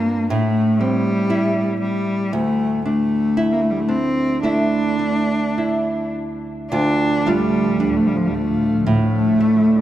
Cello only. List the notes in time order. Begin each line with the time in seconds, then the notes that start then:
Already playing: A#3
0.29 A3
0.79 G3
1.80 G3
2.33 A3
2.85 A3
3.52 A#3
3.61 A3
3.70 G3
3.79 A3
3.89 C4
4.44 D4
6.71 D4
7.26 G3
7.96 A3
8.07 G3
8.17 F3
8.26 G3
8.34 A3
8.88 A3